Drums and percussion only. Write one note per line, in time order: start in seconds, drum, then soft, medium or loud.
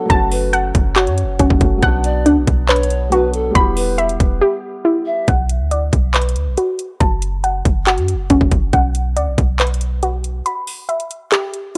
0.10 kick loud
0.10 closed hi-hat medium
0.32 open hi-hat medium
0.53 closed hi-hat medium
0.75 kick loud
0.75 closed hi-hat medium
0.96 clap loud
0.96 closed hi-hat medium
1.07 closed hi-hat medium
1.18 closed hi-hat medium
1.39 kick loud
1.39 closed hi-hat medium
1.50 kick loud
1.61 kick loud
1.61 closed hi-hat medium
1.82 kick loud
1.82 closed hi-hat medium
2.04 closed hi-hat medium
2.26 closed hi-hat medium
2.47 kick loud
2.47 closed hi-hat medium
2.69 clap loud
2.69 closed hi-hat soft
2.76 closed hi-hat medium
2.83 closed hi-hat medium
2.90 closed hi-hat medium
3.12 closed hi-hat medium
3.34 closed hi-hat medium
3.55 kick loud
3.55 closed hi-hat medium
3.77 open hi-hat medium
3.98 closed hi-hat medium
4.09 closed hi-hat medium
4.20 kick loud
4.20 closed hi-hat medium
5.28 kick loud
5.28 closed hi-hat medium
5.49 closed hi-hat medium
5.71 closed hi-hat medium
5.93 kick loud
5.93 closed hi-hat medium
6.14 clap loud
6.14 closed hi-hat soft
6.22 closed hi-hat soft
6.29 closed hi-hat medium
6.36 closed hi-hat medium
6.57 closed hi-hat medium
6.79 closed hi-hat medium
7.00 kick loud
7.00 closed hi-hat medium
7.22 closed hi-hat medium
7.44 closed hi-hat medium
7.65 kick loud
7.65 closed hi-hat medium
7.87 clap loud
7.87 closed hi-hat medium
7.98 closed hi-hat soft
8.08 closed hi-hat medium
8.30 kick loud
8.30 closed hi-hat medium
8.41 kick loud
8.51 kick medium
8.51 closed hi-hat medium
8.73 kick loud
8.73 closed hi-hat medium
8.95 closed hi-hat medium
9.17 closed hi-hat medium
9.38 kick loud
9.38 closed hi-hat medium
9.60 clap loud
9.60 closed hi-hat soft
9.67 closed hi-hat soft
9.74 closed hi-hat medium
9.81 closed hi-hat medium
10.03 closed hi-hat medium
10.24 closed hi-hat medium
10.46 closed hi-hat medium
10.67 open hi-hat medium
10.89 closed hi-hat medium
11.00 closed hi-hat medium
11.11 closed hi-hat medium
11.32 clap loud
11.32 closed hi-hat medium
11.54 closed hi-hat medium